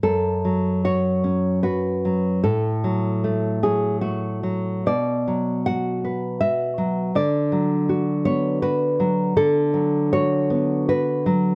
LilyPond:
\new Staff \with { instrumentName = "Nylon-string guitar" } { \time 3/4 \key fis \minor \tempo 4 = 79 << { a'4 cis''4 b'4 | a'4. gis'8 fis'4 | d''4 fis''4 e''4 | d''4. cis''8 b'4 |
\key b \dorian a'4 cis''4 b'4 | } \\ { fis,8 fis8 fis'8 cis'8 fis'8 fis8 | a,8 fis8 a8 fis8 a8 fis8 | b,8 fis8 fis'8 b'8 fis'8 fis8 | d8 fis8 fis'8 b8 fis'8 fis8 |
d8 fis8 fis'8 b8 fis'8 fis8 | } >> }